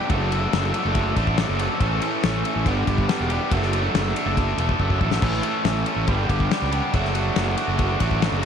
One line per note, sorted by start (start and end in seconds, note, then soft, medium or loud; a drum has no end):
0.10 0.45 F#1 loud
0.10 0.33 F#3 medium
0.10 0.32 A3 medium
0.10 0.31 D4 loud
0.10 0.30 A4 loud
0.10 kick loud
0.10 ride loud
0.32 0.96 F#3 medium
0.32 0.75 A3 medium
0.32 0.74 D4 medium
0.32 0.73 A4 medium
0.32 ride medium
0.53 0.71 F#1 loud
0.53 snare loud
0.53 ride loud
0.74 1.17 A3 medium
0.74 1.17 D4 medium
0.74 1.15 A4 medium
0.74 ride medium
0.85 1.11 F#1 loud
0.95 kick loud
0.95 ride loud
1.16 1.43 A1 medium
1.16 1.38 A3 medium
1.16 1.38 D4 medium
1.16 1.38 A4 medium
1.16 kick medium
1.16 ride medium
1.27 kick medium
1.38 1.79 F#3 medium
1.38 1.60 A3 medium
1.38 1.59 D4 medium
1.38 1.58 A4 medium
1.38 snare loud
1.38 ride loud
1.49 1.67 F#1 loud
1.59 1.80 A3 medium
1.59 1.80 D4 medium
1.59 1.79 A4 medium
1.59 ride medium
1.80 1.98 A1 loud
1.80 2.02 A2 loud
1.80 2.02 E3 medium
1.80 2.01 A3 loud
1.80 2.01 C#4 loud
1.80 2.00 A4 loud
1.80 kick loud
1.80 ride loud
2.02 2.65 A2 medium
2.02 2.65 E3 medium
2.02 2.45 A3 medium
2.02 2.44 C#4 medium
2.02 2.43 A4 loud
2.02 ride medium
2.23 2.42 A1 loud
2.23 snare loud
2.23 ride medium
2.44 2.65 A3 medium
2.44 2.65 C#4 medium
2.44 2.64 A4 medium
2.44 ride medium
2.56 2.64 A1 loud
2.66 2.84 G1 loud
2.66 3.09 G2 medium
2.66 3.09 D3 medium
2.66 2.88 G3 loud
2.66 2.87 B3 loud
2.66 2.87 D4 loud
2.66 2.86 G4 loud
2.66 kick loud
2.66 ride medium
2.87 3.05 G1 medium
2.87 3.07 G3 medium
2.87 3.07 B3 medium
2.87 3.08 D4 medium
2.87 3.09 G4 medium
2.87 kick medium
2.87 ride medium
2.98 kick medium
3.08 3.31 G3 medium
3.08 3.30 B3 medium
3.08 3.29 D4 medium
3.08 3.29 G4 medium
3.08 snare loud
3.08 ride loud
3.20 3.38 E1 medium
3.30 3.50 G3 medium
3.30 3.51 B3 medium
3.30 3.50 D4 medium
3.30 3.50 G4 medium
3.30 ride medium
3.51 3.87 F#1 loud
3.51 3.73 F#3 medium
3.51 3.72 A3 loud
3.51 3.72 D4 loud
3.51 3.71 A4 loud
3.51 kick loud
3.51 ride loud
3.62 snare soft
3.72 4.38 F#3 medium
3.72 4.16 A3 medium
3.72 4.16 D4 medium
3.72 4.14 A4 medium
3.72 ride medium
3.94 4.12 F#1 loud
3.94 snare loud
3.94 ride loud
4.16 4.59 A3 medium
4.16 4.59 D4 medium
4.16 4.57 A4 medium
4.16 ride medium
4.26 4.53 F#1 loud
4.37 kick loud
4.37 ride loud
4.57 4.77 E1 medium
4.57 4.79 A3 medium
4.57 4.80 D4 medium
4.57 4.80 A4 medium
4.57 ride medium
4.69 kick medium
4.79 4.99 F#1 medium
4.79 5.21 F#3 medium
4.79 5.01 A3 medium
4.79 5.01 D4 medium
4.79 4.99 A4 medium
4.79 kick medium
4.90 kick medium
5.01 5.20 A1 medium
5.01 5.22 A3 medium
5.01 5.22 D4 medium
5.01 5.21 A4 medium
5.01 kick medium
5.11 snare loud
5.22 5.40 A1 loud
5.22 5.44 A2 medium
5.22 5.44 E3 medium
5.22 5.43 A3 medium
5.22 5.43 C#4 medium
5.22 5.42 A4 medium
5.22 kick loud
5.22 crash loud
5.33 snare soft
5.43 6.07 A2 medium
5.43 6.07 E3 medium
5.43 5.87 A3 medium
5.43 5.86 C#4 medium
5.43 5.85 A4 medium
5.43 ride medium
5.65 5.83 A1 loud
5.65 snare loud
5.65 ride loud
5.86 6.08 A3 medium
5.86 6.07 C#4 medium
5.86 6.07 A4 medium
5.86 ride medium
5.96 6.06 A1 medium
6.07 6.26 G1 loud
6.07 6.51 G2 medium
6.07 6.51 D3 loud
6.07 6.30 G3 loud
6.07 6.30 B3 loud
6.07 6.29 D4 loud
6.07 6.29 G4 medium
6.07 kick loud
6.07 ride medium
6.29 6.47 G1 medium
6.29 6.49 G3 medium
6.29 6.50 B3 medium
6.29 6.50 D4 medium
6.29 6.51 G4 medium
6.29 kick medium
6.29 ride medium
6.40 kick medium
6.50 6.73 G3 medium
6.50 6.72 B3 medium
6.50 6.71 D4 medium
6.50 6.71 G4 medium
6.50 snare loud
6.50 ride medium
6.62 6.80 C#2 medium
6.72 6.93 G3 medium
6.72 6.93 B3 medium
6.72 6.93 D4 medium
6.72 6.92 G4 medium
6.72 ride medium
6.93 7.29 F#1 loud
6.93 7.16 F#3 medium
6.93 7.15 A3 medium
6.93 7.14 D4 loud
6.93 7.14 F#4 loud
6.93 kick loud
6.93 ride loud
7.05 snare soft
7.15 7.80 F#3 medium
7.15 7.58 A3 medium
7.15 7.57 D4 medium
7.15 7.56 F#4 medium
7.15 ride medium
7.36 7.54 F#1 medium
7.36 snare loud
7.36 ride loud
7.57 8.00 A3 medium
7.57 8.00 D4 medium
7.57 7.99 F#4 medium
7.57 ride medium
7.68 7.95 F#1 loud
7.79 kick loud
7.79 ride loud
8.00 8.27 A1 medium
8.00 8.20 A3 medium
8.00 8.21 D4 medium
8.00 8.21 F#4 medium
8.00 kick medium
8.00 ride medium
8.11 kick medium
8.21 8.45 F#3 medium
8.21 8.42 A3 medium
8.21 8.41 D4 medium
8.21 8.40 F#4 medium
8.21 snare loud
8.21 ride loud
8.32 8.45 F#1 loud
8.41 8.45 F#4 medium